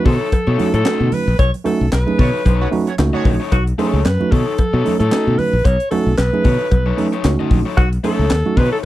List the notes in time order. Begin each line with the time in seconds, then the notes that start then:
0.05 B2 D#4 A4 C#5, kick, open hi-hat, low conga
0.20 D#4 F#4
0.32 muted fingered electric bass stroke, kick, closed hi-hat, cowbell, high conga
0.47 B2 D#4 A4 C#5, muted conga
0.58 A3 C#4 D#4 F#4, open hi-hat, high conga
0.74 A2 D#4 A4 C#5, closed hi-hat
0.85 A3 C#4 D#4 F#4 A4 D#5, snare, clap, closed hi-hat, cowbell, muted conga
1.00 B2, muted conga, low conga
1.12 B4, open hi-hat, high conga, low conga
1.28 A#1
1.39 B1 C#5, kick, closed hi-hat, cowbell, muted conga
1.54 closed hi-hat, muted conga
1.64 A3 C#4 D#4 F#4 A4, open hi-hat, cowbell, high conga
1.81 B1
1.92 B1 B4, snare, clap, closed hi-hat, cowbell
2.06 A3 C#4 D#4 G#4, muted conga, high conga
2.19 B2 A3 C#4 D#4 F#4 A4 C#5, kick, open hi-hat, low conga
2.33 D#4 F#4
2.45 B1 D#4 A4 C#5, kick, closed hi-hat, cowbell, muted conga, high conga
2.60 A3 C#4 F#4 C#5
2.71 A3 C#4 D#4 F#4, open hi-hat, high conga
2.87 A3 C#4 F#4 C#5, closed hi-hat
2.98 C#2 A3 C#4 D#4 F#4, snare, clap, closed hi-hat, cowbell
3.13 A3 C#4 D#4 F#4 A4 C#5 D#5, muted conga, low conga
3.25 A#1, kick, open hi-hat, cowbell, high conga, low conga
3.40 D#4 A4 C#5
3.52 B1 F#4, kick, closed hi-hat, cowbell, muted conga
3.67 closed hi-hat, muted conga
3.78 A3 C#4 D#4 G#4 A4 C#5, open hi-hat, cowbell, high conga
3.93 C#2
4.04 F#2 B4, snare, clap, closed hi-hat, cowbell, muted conga
4.20 A3 C#4 D#4 F#4, muted conga, high conga
4.31 B2 D#4 A4 C#5, kick, open hi-hat, low conga
4.46 D#4 F#4
4.58 muted fingered electric bass stroke, kick, closed hi-hat, cowbell, muted conga, high conga
4.73 B2 D#4 A4 C#5, muted conga
4.84 A3 C#4 D#4 A4, open hi-hat, high conga
4.99 A2 D#4 A4 C#5, closed hi-hat
5.12 A3 C#4 D#4 F#4 A4 D#5, snare, clap, closed hi-hat, cowbell, muted conga
5.27 B2, low conga
5.38 B4, open hi-hat, high conga, low conga
5.53 A#1
5.65 B1 C#5, kick, closed hi-hat, cowbell
5.80 closed hi-hat
5.91 A3 C#4 D#4 F#4 A4, open hi-hat, cowbell, high conga
6.07 B1
6.18 B1 B4, snare, clap, closed hi-hat, cowbell
6.33 A3 C#4 D#4 G#4, high conga
6.44 B2 D#4 A4 C#5, kick, open hi-hat, low conga
6.59 D#4 F#4
6.71 B1, kick, closed hi-hat, cowbell, high conga
6.86 D#4 A4 C#5, muted conga
6.97 A3 C#4 D#4 A4, open hi-hat, high conga
7.13 D#4 A4 C#5, closed hi-hat
7.24 C#2 A3 C#4 D#4 F#4, snare, clap, closed hi-hat, cowbell
7.39 D#4 A4 D#5, muted conga, low conga
7.51 A#1, kick, open hi-hat, high conga, low conga
7.66 D#4 A4 C#5
7.77 B1 F#4, kick, closed hi-hat, cowbell
7.93 closed hi-hat
8.04 A3 C#4 D#4 A4 C#5, open hi-hat, cowbell, high conga
8.19 C#2
8.30 D#2, snare, clap, closed hi-hat, cowbell, muted conga
8.45 A3 C#4 D#4 F#4, high conga
8.57 B2 D#4 A4 B4 C#5, kick, open hi-hat, low conga
8.72 D#4 F#4 A4